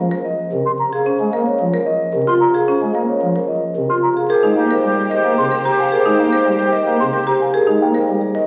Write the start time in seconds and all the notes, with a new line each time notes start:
0.11 A#4
0.24 D#5
0.52 C3 A#4
0.66 C6
0.79 A#5
0.93 G#4 F5
1.05 C#4 C5
1.20 G#3
1.33 A#3 A#4 F5
1.46 C#5
1.60 F3
1.73 A#4
1.86 D#5
2.13 C3 A#4
2.27 F4 C6
2.41 A#5
2.54 G#4 F5
2.67 C#4 C5
2.82 G#3
2.94 A#3 A#4 F5
3.09 C#5
3.22 F3
3.35 A#4
3.48 D#5
3.74 C3 A#4
3.89 F4 C6
4.03 A#5
4.16 G#4 F5
4.29 G4 G#4 A#4 C5
4.43 G#3 D#4
4.56 A#3 G4 F5
4.69 A#4 C5
4.84 G3 G4
4.95 G#4
5.09 A#4 D#5
5.15 G4
5.25 A#3
5.37 C3 G#4 C6
5.43 G4
5.50 G4 A#4
5.65 G4 A#5
5.71 G4
5.78 F5 G#5
5.91 G#4 A#4
5.99 G4
6.06 G#3 D#4
6.18 A#3 F5
6.28 G4 C5
6.33 A#4
6.47 G3
6.55 G4 G#4
6.72 A#4 D#5
6.84 A#3 G4
7.00 C3 G#4 C6
7.12 G4 A#4
7.27 G4 A#5
7.40 F5 G#5
7.54 G#4 A#4
7.67 G#3 D#4
7.81 A#3 F5 G5
7.93 A#4 C5
8.09 G3
8.21 G#4
8.35 A#4 D#5